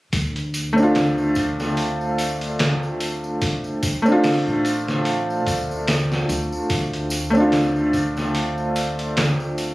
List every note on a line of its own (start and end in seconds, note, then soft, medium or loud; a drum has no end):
0.13 4.42 D2 medium
0.13 kick loud
0.13 open hi-hat medium
0.13 tambourine soft
0.36 closed hi-hat soft
0.36 tambourine soft
0.54 open hi-hat medium
0.54 tambourine medium
0.73 3.98 A3 medium
0.73 4.00 C4 medium
0.78 4.01 D4 medium
0.78 tambourine soft
0.83 4.03 F4 medium
0.95 snare loud
0.95 open hi-hat medium
0.95 tambourine medium
1.18 tambourine soft
1.35 kick medium
1.35 open hi-hat medium
1.35 tambourine medium
1.60 snare soft
1.60 tambourine soft
1.77 open hi-hat medium
1.77 tambourine soft
2.01 tambourine soft
2.18 open hi-hat medium
2.18 tambourine medium
2.41 closed hi-hat soft
2.41 tambourine soft
2.59 snare loud
2.59 open hi-hat medium
2.59 tambourine soft
2.83 tambourine soft
3.00 open hi-hat medium
3.00 tambourine medium
3.24 tambourine soft
3.41 kick loud
3.41 open hi-hat medium
3.41 tambourine soft
3.64 tambourine soft
3.83 kick medium
3.83 open hi-hat medium
3.83 tambourine medium
4.02 7.27 A3 loud
4.02 7.29 C4 medium
4.02 tambourine soft
4.08 7.30 D4 medium
4.08 7.32 F4 loud
4.24 snare loud
4.24 open hi-hat medium
4.24 tambourine medium
4.47 5.47 A1 medium
4.47 tambourine soft
4.65 open hi-hat medium
4.65 tambourine medium
4.88 snare soft
4.88 tambourine soft
5.05 open hi-hat medium
5.05 tambourine soft
5.30 tambourine soft
5.47 6.26 D2 medium
5.47 kick medium
5.47 open hi-hat medium
5.47 tambourine medium
5.71 tambourine soft
5.88 snare loud
5.88 open hi-hat medium
5.88 tambourine medium
6.12 snare soft
6.12 tambourine soft
6.29 6.50 D2 medium
6.29 open hi-hat medium
6.29 tambourine medium
6.52 tambourine soft
6.70 9.74 D2 medium
6.70 kick loud
6.70 open hi-hat medium
6.70 tambourine medium
6.93 closed hi-hat soft
6.93 tambourine soft
7.10 open hi-hat medium
7.10 tambourine medium
7.30 9.74 A3 medium
7.30 9.74 C4 medium
7.35 9.74 D4 medium
7.35 tambourine soft
7.40 9.74 F4 medium
7.52 snare loud
7.52 open hi-hat medium
7.52 tambourine medium
7.76 tambourine soft
7.93 kick medium
7.93 open hi-hat medium
7.93 tambourine medium
8.17 snare soft
8.17 tambourine soft
8.35 open hi-hat medium
8.35 tambourine soft
8.58 tambourine soft
8.76 open hi-hat medium
8.76 tambourine medium
8.99 closed hi-hat soft
8.99 tambourine soft
9.17 snare loud
9.17 open hi-hat medium
9.17 tambourine soft
9.40 tambourine soft
9.58 open hi-hat medium
9.58 tambourine medium